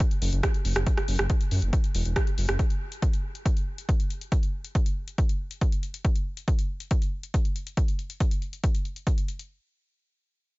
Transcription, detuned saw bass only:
0.22 0.30 F#1 medium
0.33 0.41 F#1 medium
0.65 0.73 F#1 medium
0.76 0.84 F#1 medium
1.08 1.16 F#1 medium
1.19 1.27 F#1 medium
1.51 1.60 F#2 medium
1.62 1.70 F#1 medium
1.95 2.03 E1 medium
2.06 2.14 E1 medium
2.38 2.46 F#1 medium
2.49 2.57 F#1 medium

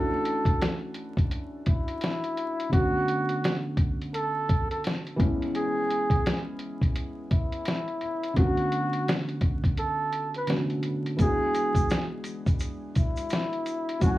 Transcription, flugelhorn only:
0.00 0.79 A4 loud
1.68 2.69 E4 medium
2.73 3.61 F#4 loud
4.15 4.68 A4 medium
4.71 4.83 A4 medium
5.56 6.44 G#4 loud
7.32 8.34 E4 medium
8.38 9.26 F#4 loud
9.79 10.32 A4 medium
10.37 10.49 B4 medium
11.21 12.09 G#4 loud
12.97 13.99 E4 medium
14.03 14.18 F#4 loud

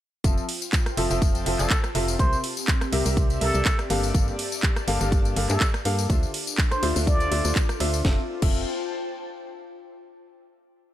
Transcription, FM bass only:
0.24 0.41 F1 loud
0.97 1.08 F1 loud
1.11 1.44 F1 loud
1.46 1.57 F1 loud
1.59 1.68 F1 loud
1.95 2.17 F1 loud
2.19 2.36 C2 loud
2.93 3.03 C2 loud
3.06 3.39 C2 loud
3.41 3.52 C2 medium
3.54 3.63 C2 medium
3.90 4.12 G1 loud
4.15 4.31 G1 loud
4.88 4.98 G1 loud
5.01 5.34 G1 loud
5.36 5.47 G1 loud
5.50 5.58 G2 loud
5.85 6.07 G2 loud
6.10 6.26 D2 loud
6.83 6.93 D2 loud
6.96 7.29 D2 loud
7.32 7.42 D2 loud
7.45 7.53 D2 loud
7.80 8.03 D2 loud
8.05 8.19 F1 loud
8.42 8.65 F1 loud

